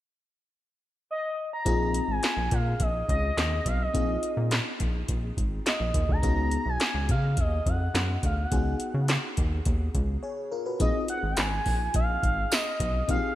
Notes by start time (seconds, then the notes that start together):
1.11 D#5
1.53 A#5
1.65 A#1 C4 D#4 F4 G#4, kick, closed hi-hat
1.94 closed hi-hat
2.08 G#1 G#5
2.23 snare, clap, closed hi-hat
2.37 A#1
2.51 A#2 F5, kick, closed hi-hat
2.80 A#1 D#5, kick, closed hi-hat
3.09 C#2 D#5, kick, closed hi-hat
3.38 D#2, snare, clap, closed hi-hat
3.66 B1 F5, kick, closed hi-hat
3.82 D#5
3.94 A#1 C4 D#4 F4 G#4, kick, closed hi-hat
4.23 closed hi-hat
4.37 A#2
4.51 snare, clap, closed hi-hat
4.80 A#1, kick, closed hi-hat
5.08 A#1, kick, closed hi-hat
5.37 G#1, kick, closed hi-hat
5.66 D#5, snare, clap, closed hi-hat
5.80 A#1
5.94 D#2, kick, closed hi-hat
6.09 D2 A#5, kick
6.22 C#2 B3 D#4 F#4 G#4, kick, closed hi-hat
6.51 closed hi-hat
6.66 B1 G#5
6.80 snare, clap, closed hi-hat
6.94 C#2
7.09 C#3 F5, kick, closed hi-hat
7.37 D#2 D#5, kick, closed hi-hat
7.66 F2 F#5, kick, closed hi-hat
7.94 F#2, snare, clap, closed hi-hat
8.23 D2 F5, kick, closed hi-hat
8.40 F#5
8.51 C#2 B3 D#4 F#4 G#4, kick, closed hi-hat
8.80 closed hi-hat
8.94 C#3
9.08 snare, clap, closed hi-hat
9.37 D#2, kick, closed hi-hat
9.65 D#2, kick, closed hi-hat
9.95 C#2, kick, closed hi-hat
10.23 G#4 C#5
10.52 F4 A#4
10.66 F#4 B4
10.80 A#1 C4 D#4 F4 G#4 D#5, kick, closed hi-hat
11.08 F#5, closed hi-hat
11.23 G#1
11.32 G5
11.37 G#1 G#5, snare, clap, closed hi-hat, tambourine
11.66 A#1, kick, open hi-hat
11.94 A#1 F5, kick, closed hi-hat
12.23 G#1, kick, closed hi-hat
12.52 D#5, snare, clap, closed hi-hat, tambourine
12.80 B1, kick, closed hi-hat
13.08 A#1 C4 D#4 F4 G4 F5, kick, closed hi-hat
13.16 G#4